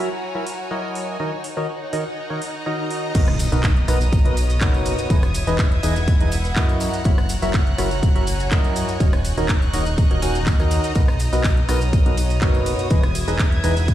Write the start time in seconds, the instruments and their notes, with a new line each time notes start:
Already playing: violin section E4 F#4 A#5, string section F#4 C#5 G#5
0.35 synth stab F#3 E4 F#4 A#4 C#5 E5
0.47 open hi-hat
0.71 synth stab F#3 E4 F#4 A#4 C#5 D#5
0.95 open hi-hat
1.20 synth stab D#3 D#4 F#4 A#4 C#5 D#5, violin section D#4 C#5 F#5, string section D#4
1.44 open hi-hat
1.57 synth stab D#3 D#4 F#4 A#4 C#5 D#5
1.77 string section A#5
1.93 synth stab D#3 D#4 F#4 A#4 C#5 D#5, open hi-hat
2.08 string section D#5
2.30 synth stab D#3 D#4 F#4 A#4 C#5 D#5
2.42 open hi-hat
2.66 synth stab D#3 D#4 F#4 A#4 C#5 D#5
2.91 open hi-hat
3.14 analog synth bass B1, synth stab B2 D#4 F#4 A#4 B4 D#5, string section B3, violin section D#5 A#5 D#6, kick, closed hi-hat, ride, tambourine, crash, impact, shaker
3.27 cross-stick, tambourine
3.39 open hi-hat, ride, tambourine, shaker
3.52 analog synth bass B1, synth stab B2 D#4 F#4 A#4 B4 D#5, closed hi-hat, tambourine, shaker
3.63 kick, clap, closed hi-hat, ride, tambourine, shaker
3.77 closed hi-hat
3.88 analog synth bass B1, synth stab B2 D#4 F#4 A#4 B4 D#5, cross-stick, open hi-hat, ride, tambourine, shaker
4.01 string section F#4 C#5, closed hi-hat, tambourine, shaker
4.13 kick, closed hi-hat, ride, tambourine, shaker
4.25 analog synth bass B1, synth stab B2 D#4 F#4 A#4 B4 D#5, closed hi-hat
4.37 open hi-hat, ride, tambourine, shaker
4.50 closed hi-hat, tambourine, shaker
4.61 analog synth bass F#1, synth stab B2 D#4 F#4 A#4 B4 C#5, kick, clap, closed hi-hat, ride, tambourine, shaker
4.74 closed hi-hat, tambourine
4.86 open hi-hat, ride, tambourine, shaker
4.99 closed hi-hat, tambourine, shaker
5.10 analog synth bass E1, synth stab E3 D#4 E4 G#4 B4 D#5, string section E4, violin section E5 G#6, kick, closed hi-hat, ride, tambourine, shaker
5.23 cross-stick, closed hi-hat, tambourine
5.34 open hi-hat, ride, tambourine, shaker
5.47 analog synth bass E1, synth stab E3 D#4 E4 G#4 B4 D#5, closed hi-hat, tambourine, shaker
5.59 string section B4, kick, clap, closed hi-hat, ride, tambourine, shaker
5.72 closed hi-hat
5.83 analog synth bass E1, synth stab E3 D#4 E4 G#4 B4 D#5, open hi-hat, ride, tambourine, shaker
5.87 string section F#5
5.96 closed hi-hat, tambourine, shaker
6.08 kick, closed hi-hat, ride, tambourine, shaker
6.20 analog synth bass E1, synth stab E3 D#4 E4 G#4 B4 D#5, closed hi-hat
6.32 open hi-hat, ride, tambourine, shaker
6.44 closed hi-hat, tambourine, shaker
6.56 analog synth bass F#2, synth stab F#3 E4 F#4 A#4 C#5 D#5, kick, clap, closed hi-hat, ride, tambourine, shaker
6.69 closed hi-hat, tambourine
6.80 string section F#4, violin section F#5 A#5 F#6, open hi-hat, ride, tambourine, shaker
6.93 closed hi-hat, tambourine, shaker
6.98 string section C#5
7.04 analog synth bass F#1, synth stab F#3 E4 F#4 A#4 C#5 E5, kick, closed hi-hat, ride, tambourine, shaker
7.18 cross-stick, tambourine
7.29 open hi-hat, ride, tambourine, shaker
7.42 analog synth bass F#1, synth stab F#3 E4 F#4 A#4 C#5 E5, closed hi-hat, tambourine, shaker
7.54 string section G#5, kick, clap, closed hi-hat, ride, tambourine, shaker
7.67 closed hi-hat
7.78 analog synth bass F#1, synth stab F#3 E4 F#4 A#4 C#5 E5, cross-stick, open hi-hat, ride, tambourine, shaker
7.91 closed hi-hat, tambourine, shaker
8.03 kick, closed hi-hat, ride, tambourine, shaker
8.15 analog synth bass F#1, synth stab F#3 E4 F#4 A#4 C#5 E5, closed hi-hat
8.27 open hi-hat, ride, tambourine, shaker
8.40 closed hi-hat, tambourine, shaker
8.51 analog synth bass F#2, synth stab F#3 E4 F#4 A#4 C#5 D#5, kick, clap, closed hi-hat, ride, tambourine, shaker
8.64 closed hi-hat, tambourine
8.76 open hi-hat, ride, tambourine, shaker
8.88 closed hi-hat, tambourine, shaker
9.00 analog synth bass D#1, synth stab D#3 D#4 F#4 A#4 C#5 D#5, string section D#4, violin section D#5 C#6 F#6, kick, closed hi-hat, ride, tambourine, shaker
9.13 cross-stick, closed hi-hat, tambourine
9.24 open hi-hat, ride, tambourine, shaker
9.37 analog synth bass D#1, synth stab D#3 D#4 F#4 A#4 C#5 D#5, closed hi-hat, tambourine, shaker
9.49 string section A#5, kick, clap, closed hi-hat, ride, tambourine, shaker
9.62 closed hi-hat, tambourine
9.73 analog synth bass D#1, synth stab D#3 D#4 F#4 A#4 C#5 D#5, open hi-hat, ride, tambourine, shaker
9.85 string section D#5, closed hi-hat, tambourine, shaker
9.98 kick, closed hi-hat, ride, tambourine, shaker
10.11 analog synth bass D#1, synth stab D#3 D#4 F#4 A#4 C#5 D#5, closed hi-hat
10.22 synth stab D#3 D#4 F#4 A#4 C#5 G#5, open hi-hat, ride, tambourine, shaker
10.34 closed hi-hat, tambourine, shaker
10.46 analog synth bass D#2, kick, clap, closed hi-hat, ride, tambourine, shaker
10.59 synth stab D#3 D#4 F#4 A#4 C#5 D#5, closed hi-hat, tambourine
10.71 open hi-hat, ride, tambourine, shaker
10.84 closed hi-hat, tambourine, shaker
10.95 analog synth bass B1, synth stab B2 D#4 F#4 A#4 B4 D#5, string section B3, violin section D#5 A#5 D#6, kick, closed hi-hat, ride, tambourine, shaker
11.08 cross-stick, tambourine
11.19 open hi-hat, ride, tambourine, shaker
11.33 analog synth bass B1, synth stab B2 D#4 F#4 A#4 B4 D#5, closed hi-hat, tambourine, shaker
11.44 kick, clap, closed hi-hat, ride, tambourine, shaker
11.57 closed hi-hat
11.66 analog synth bass B1, synth stab B2 D#4 F#4 A#4 B4 D#5, string section F#4, cross-stick, open hi-hat, ride, tambourine, shaker
11.81 string section C#5, closed hi-hat, tambourine, shaker
11.93 kick, closed hi-hat, ride, tambourine, shaker
12.06 analog synth bass B1, synth stab B2 D#4 F#4 A#4 B4 D#5, closed hi-hat
12.17 open hi-hat, ride, tambourine, shaker
12.30 closed hi-hat, tambourine, shaker
12.41 analog synth bass F#1, synth stab B2 D#4 F#4 A#4 B4 C#5, kick, clap, closed hi-hat, ride, tambourine, shaker
12.55 closed hi-hat, tambourine
12.66 open hi-hat, ride, tambourine, shaker
12.79 closed hi-hat, tambourine, shaker
12.90 analog synth bass E1, synth stab E3 D#4 E4 G#4 B4 D#5, string section E4, violin section E5 G#6, kick, closed hi-hat, ride, tambourine, shaker
13.03 cross-stick, closed hi-hat, tambourine
13.15 open hi-hat, ride, tambourine, shaker
13.28 analog synth bass E1, synth stab E3 D#4 E4 G#4 B4 D#5, tambourine, shaker
13.33 string section B4
13.39 kick, clap, closed hi-hat, ride, tambourine, shaker
13.52 closed hi-hat
13.64 analog synth bass E1, synth stab E3 D#4 E4 G#4 B4 D#5, string section F#5, open hi-hat, ride, tambourine, shaker
13.77 closed hi-hat, tambourine, shaker
13.88 kick, closed hi-hat, ride, tambourine, shaker